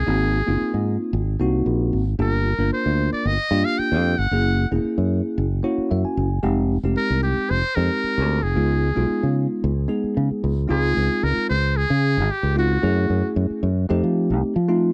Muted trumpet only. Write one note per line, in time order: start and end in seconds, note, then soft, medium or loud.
0.00 1.00 G#4 medium
2.21 2.70 A#4 medium
2.73 3.10 C5 medium
3.13 3.28 D5 medium
3.26 3.67 D#5 medium
3.65 3.80 F5 medium
3.78 4.20 G5 medium
4.18 4.72 F#5 medium
6.97 7.22 A#4 medium
7.23 7.52 G4 medium
7.50 7.77 C5 medium
7.75 8.44 A#4 medium
8.42 9.50 G#4 medium
10.70 11.25 G#4 medium
11.24 11.49 A#4 medium
11.49 11.78 C5 medium
11.77 12.32 G#4 medium
12.31 12.57 G4 medium
12.59 13.33 F#4 medium